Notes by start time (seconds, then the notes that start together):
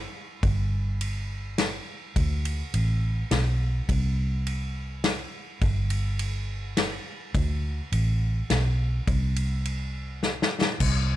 0.43 G1, kick, ride
1.01 ride
1.58 snare, ride
2.16 D2, kick, ride
2.45 ride
2.74 A1, ride
3.31 B1, snare, ride
3.89 C2, kick, ride
4.47 ride
5.04 snare, ride
5.61 G1, kick, ride
5.90 ride
6.19 ride
6.77 snare, ride
7.35 D2, kick, ride
7.92 A1, ride
8.50 B1, snare, ride
9.07 C2, kick, ride
9.36 ride
9.65 ride
10.23 snare
10.42 snare
10.61 snare
10.80 C2, kick, crash